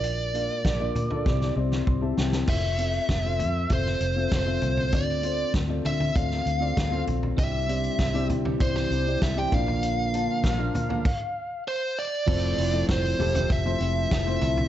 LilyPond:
<<
  \new Staff \with { instrumentName = "Lead electric guitar" } { \time 4/4 \key f \major \tempo 4 = 98 d''2~ d''8 r4. | e''2 c''4 c''4 | d''4 r8 e''8 f''4. r8 | e''4. r8 c''16 c''8. e''16 g''16 f''8~ |
f''2. c''8 d''8~ | d''4 c''4 e''4 e''4 | }
  \new Staff \with { instrumentName = "Upright piano" } { \time 4/4 \key f \major << { r2. c'''16 a''16 g''8 | r1 | r1 | r1 |
r1 | r1 | } \\ { <bes d' f' d''>16 r16 <bes d' f' f''>8. <bes d' f' d''>8 <bes d' f' a'>16 <c' e' g' d''>8 <c' e' g' d''>8. <c' e' g' e''>8. | <c' f' a' e''>8 <c' f' a' e''>8. <c' f' a' e''>8. <c' f' a' e''>8. <c' f' a' e''>8 <c' f' a' e''>8. | <c' f' a' d''>8 <c' f' a' c''>8. <c' f' a' d''>8. <c' f' a' d''>8. <c' f' a' d''>8 <c' f' a' f''>8. | <c' e' g' d''>8 <c' e' g' d''>8. <c' e' g' d''>8. <c' e' g' d''>8. <c' e' g' d''>8 <c' e' g' d''>16 <bes d' f' d''>8~ |
<bes d' f' d''>16 r16 <bes d' f' a''>8. <bes d' f' f''>8. r2 | <f a c' e' c''>8. <f a c' e' d''>8. <f a c' e' g'>8. <f a c' e' c''>8. r16 <a c' e' f' c''>8. | } >> }
  \new Staff \with { instrumentName = "Upright piano" } { \clef bass \time 4/4 \key f \major bes,4 r4 c4. r8 | r1 | d4. r2 r8 | c4. r2 bes,8~ |
bes,4 r2. | r1 | }
  \new Staff \with { instrumentName = "Clean electric guitar" } { \time 4/4 \key f \major r1 | r1 | r1 | <g c' d' g'>4~ <g c' d' g'>16 <g c' d' g'>8 <c e g c' d' g'>8. <g c' d' g'>8. <c e g c' d' g'>16 <bes, d f bes d' bes'>8~ |
<bes, d f bes d' bes'>4~ <bes, d f bes d' bes'>16 <f bes d' bes'>8 <bes, d f bes d' bes'>16 r2 | <f c' e' a'>8 <f c' e' a'>4 <f c' e' a'>4 <f c' e' a'>8 <f c' e' a'>8 <f c' e' a'>8 | }
  \new Staff \with { instrumentName = "Fingered electric bass" } { \clef bass \time 4/4 \key f \major bes,,4 bes,,8 bes,8 c,8 c,8 c,8 c,8 | f,,4 f,,8 f,8 f,,8 f,,8 f,,8 c,8 | d,4 d,8 d8 d,8 d,8 d,8 bes,,8 | c,4 c,8 c8 c,8 c,8 c,8 bes,,8~ |
bes,,4 bes,,8 bes,8 r2 | f,,8 f,,8 f,,8 e,,8 f,,8 f,,8 f,,8 c,8 | }
  \new DrumStaff \with { instrumentName = "Drums" } \drummode { \time 4/4 hh8 hh8 <hh bd sn>8 <hh tomfh>16 tomfh16 <bd sn>16 sn8 sn16 bd8 sn16 sn16 | <cymc bd>8 hh16 hh16 <hh bd sn>8 <hh tomfh>8 <hh bd>16 sn16 hh8 <hh bd sn>8 <hh tomfh>16 tomfh16 | <hh bd>8 hh8 <hh bd sn>8 <hh tomfh>16 tomfh16 <hh bd>16 sn16 hh8 <hh bd sn>8 <hh tomfh>16 tomfh16 | <hh bd>8 hh16 hh16 <hh bd sn>16 hh16 <hh tomfh>16 tomfh16 <hh bd>16 sn16 hh8 <hh bd sn>8 <hh bd tomfh>16 tomfh16 |
hh8 hh8 <hh bd sn>8 <hh tomfh>16 tomfh16 <cymc bd>4 r4 | <cymc bd>8 <hho hhp>16 hho16 <hho hhp bd sn>16 <hho hhp>16 <hho hhp tomfh>16 <hhp tomfh>16 <hho hhp bd>8 <hho hhp>8 <hho hhp bd sn>8 <hho hhp tomfh>16 tomfh16 | }
>>